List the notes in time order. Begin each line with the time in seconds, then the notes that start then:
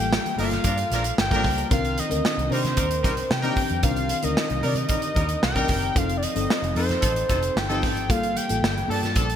Already playing: G3 A#3 G5
0.00 A1 F4 A4
0.11 snare, muted conga
0.26 closed hi-hat, high conga
0.36 G1 F3 G3 A#3 D4 F4 A4 A#4 F5, open hi-hat, low conga
0.51 snare, closed hi-hat, high conga, low conga
0.64 G2 F3 D4 A#4, kick, closed hi-hat
0.78 closed hi-hat
0.90 A#1 F3 D4 A#4, snare, closed hi-hat, high conga
1.04 closed hi-hat
1.18 G1 G5, snare, high conga
1.30 F3 G3 A#3 D4 F4 A4 A#4, kick, closed hi-hat, high conga
1.44 C#2, kick, snare, open hi-hat, low conga
1.58 closed hi-hat
1.70 C2 D#3 C4 D4 A#4 F5, kick, closed hi-hat, muted conga
1.85 closed hi-hat
1.98 D#5, closed hi-hat, muted conga, high conga
2.09 D2 D#3 C4 D4 A#4, closed hi-hat
2.25 snare
2.38 C2, closed hi-hat, high conga
2.50 C3 D#3 G3 C4 D4 D#4 A#4 C5, open hi-hat, muted conga, low conga
2.65 snare, closed hi-hat, high conga, low conga
2.77 D#2 G3 D#4 A#4, kick, closed hi-hat
2.91 closed hi-hat
3.03 C2 G3 D#4 A#4, kick, snare, closed hi-hat, muted conga, high conga
3.17 closed hi-hat
3.30 C3 G5, snare, high conga
3.42 D#3 G3 C4 D4 D#4 G4 A#4, closed hi-hat, high conga
3.56 kick, open hi-hat, muted conga, low conga
3.70 F2, closed hi-hat
3.83 C2 D#3 C4 D4 A#4 F5, kick, closed hi-hat
3.96 closed hi-hat
4.09 closed hi-hat, muted conga, high conga
4.22 D2 D#3 C4 D4 A#4 D#5, closed hi-hat
4.35 snare, muted conga
4.50 C2, closed hi-hat, high conga
4.61 C3 D3 G3 C4 D#4 A#4 D5, open hi-hat, low conga
4.68 D#3
4.75 D#5, closed hi-hat, high conga, low conga
4.88 G3 D#4 A#4, kick, closed hi-hat
5.02 closed hi-hat
5.15 D#2 G3 D#4 A#4, kick, closed hi-hat, muted conga, high conga
5.29 closed hi-hat
5.43 C2 G5, snare, muted conga, high conga
5.55 D#3 G3 C4 D4 D#4 A#4, kick, closed hi-hat, high conga
5.68 F#1, kick, snare, open hi-hat, muted conga, low conga
5.82 closed hi-hat
5.95 F1 F3 C4 D#4 A4 F5, kick, closed hi-hat, muted conga
6.09 closed hi-hat
6.17 D5
6.22 D#5, closed hi-hat, high conga
6.34 G1 F3 C4 D#4 A4, closed hi-hat
6.49 snare, muted conga
6.62 F1, closed hi-hat, high conga
6.75 F2 F3 C4 D#4 A4 C5, open hi-hat, muted conga, low conga
6.89 snare, closed hi-hat, high conga, low conga
7.01 A1 F3 D#4 A4, kick, closed hi-hat
7.16 closed hi-hat
7.28 F1 F3 D#4 A4, kick, snare, closed hi-hat, muted conga, high conga
7.43 closed hi-hat
7.56 G1 G5, snare, high conga
7.68 F3 C4 D#4 G4 A4, closed hi-hat, high conga
7.82 G#1, kick, snare, open hi-hat, low conga
7.97 closed hi-hat
8.09 G1 G3 A#3 F4 A4 F5, kick, closed hi-hat
8.23 closed hi-hat
8.36 G5, closed hi-hat, high conga
8.49 A1 G3 A#3 F4 A4, closed hi-hat
8.63 G1, snare, muted conga
8.78 closed hi-hat, high conga
8.88 G2 F3 G3 A#3 D4 F4 A4 A5, open hi-hat, muted conga, low conga
9.03 snare, closed hi-hat, high conga, low conga
9.16 A#1 F3 D4 A4, kick, closed hi-hat
9.30 closed hi-hat